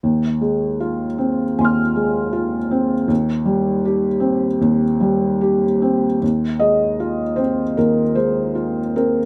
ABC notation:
X:1
M:4/4
L:1/8
Q:1/4=77
K:Fdor
V:1 name="Felt piano"
z4 [ac'f']4 | z8 | z e2 c B c2 B |]
V:2 name="Felt piano"
E,, A, F C E,, A, F C | E,, G, G C E,, G, G C | E,, A, F C E,, A, F C |]